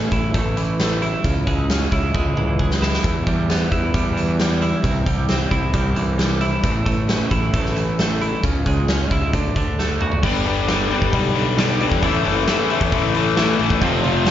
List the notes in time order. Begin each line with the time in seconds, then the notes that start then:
Already playing: A2 E3 A3 C#4 E4
0.12 A1 E4, kick, closed hi-hat
0.34 A1 A3, kick, closed hi-hat
0.57 E3, closed hi-hat
0.79 A3, snare, closed hi-hat
1.02 E4, closed hi-hat
1.24 C#2 C#3, kick, closed hi-hat
1.47 C#2 G#3, kick, closed hi-hat
1.70 C#4, snare, closed hi-hat
1.92 C#2 E4, kick, closed hi-hat
2.14 C#2 G#3, kick, high tom
2.37 C#2 E3, mid tom
2.59 G#3, kick
2.71 snare
2.82 E4, snare
2.93 snare
3.04 E2, kick, closed hi-hat
3.27 E2 G3, kick, closed hi-hat
3.49 B3, snare, closed hi-hat
3.72 E2 E4, kick, closed hi-hat
3.94 E2 G3, kick, closed hi-hat
4.17 E3, closed hi-hat
4.39 G3, snare, closed hi-hat
4.62 E4, closed hi-hat
4.84 C2 C3, kick, closed hi-hat
5.06 C2 G3, kick, closed hi-hat
5.28 C4, snare, closed hi-hat
5.51 C2 E4, kick, closed hi-hat
5.74 C2 G3, kick, closed hi-hat
5.96 C2 E3, closed hi-hat
6.18 G3, snare, closed hi-hat
6.41 E4, closed hi-hat
6.63 A1 A2, kick, closed hi-hat
6.86 A1 A3, kick, closed hi-hat
7.08 C#4, snare, closed hi-hat
7.31 A1 E4, kick, closed hi-hat
7.53 A1 A3, kick, closed hi-hat
7.66 snare
7.77 E3, closed hi-hat
7.99 A3, snare, closed hi-hat
8.21 E4, closed hi-hat
8.44 C#2 C#3, kick, closed hi-hat
8.66 C#2 G#3, kick, closed hi-hat
8.88 C#4, snare, closed hi-hat
9.11 C#2 E4, kick, closed hi-hat
9.33 D2 D3, kick, closed hi-hat
9.56 D2 D3, kick, closed hi-hat
9.79 A3, snare
10.01 F#4, mid tom
10.12 floor tom
10.23 G1 G2 D3 G3 B3 D4 G4, kick, crash
10.45 G2 D3 G3 B3 D4 G4, open hi-hat
10.68 G2 D3 G3 B3 D4 G4, snare, open hi-hat
10.90 G2 D3 G3 B3 D4 G4, open hi-hat
11.02 G1, kick
11.13 B1 G2 D3 G3, kick, open hi-hat
11.35 G2 D3 G3, open hi-hat
11.57 G2 D3 G3 B3 D4 G4, snare, open hi-hat
11.80 G2 D3 G3 B3 D4 G4, open hi-hat
11.92 E2, kick
12.02 A1 A2 E3 A3 C#4 E4, kick, open hi-hat
12.24 F#1 A2 E3 A3 C#4 E4, open hi-hat
12.47 A2 E3 A3 C#4 E4, snare, open hi-hat
12.70 A2 E3 A3 C#4 E4, open hi-hat
12.81 E2, kick
12.92 A1 A2 E3 A3, kick, open hi-hat
13.15 A2 E3 A3, open hi-hat
13.37 A2 E3 A3 C#4 E4, snare, open hi-hat
13.59 A1 A2 E3 A3 C#4 E4, open hi-hat
13.70 F#1, kick
13.81 F1 F2 C3 F3 A3 C4 F4, kick, open hi-hat
14.04 F2 C3 F3 A3 C4 F4, open hi-hat
14.26 F2 C3 F3 A3 C4, snare, open hi-hat